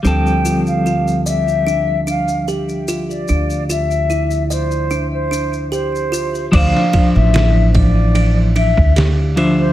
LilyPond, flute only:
\new Staff \with { instrumentName = "Flute" } { \time 4/4 \key d \minor \tempo 4 = 74 g''8. f''8. e''4 f''8 r8. d''16~ | d''8 e''4 c''8. c''8. c''4 | f''8. e''8. d''4 e''8 r8. c''16 | }